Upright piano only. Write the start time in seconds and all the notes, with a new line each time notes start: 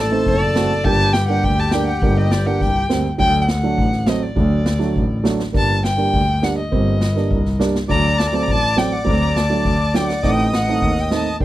0.11 A3 C4 D#4
0.56 A3 C4 F#4
0.85 G3 A#3 D4
1.29 G3 A#3 D4
1.73 G3 A#3 D4
2.02 G3 A#3 D4
2.46 G3 A#3 D4
2.89 G3 A#3 C4
3.18 F#3 A3 D4
3.63 F#3 A3 D4
4.07 F#3 A3 C4
4.35 F#3 A3 D4
4.79 F#3 A3 D4
5.24 F#3 A3 D4
5.53 G3 A#3 D4
5.98 G3 A#3 D4
6.42 G3 A#3 D4
6.71 G3 A#3 C4
7.15 G3 A#3 D4
7.59 G3 A#3 D4
7.88 F#3 A3 D4
8.33 F#3 A3 C4
8.76 F#3 A3 C4
9.05 F#3 A3 C4
9.50 F#3 A3 D4
9.94 F#3 A3 D4
10.23 A3 C4 D#4
10.68 A3 C4 D#4
11.11 A3 C4 D#4
11.40 G3 A#3 D4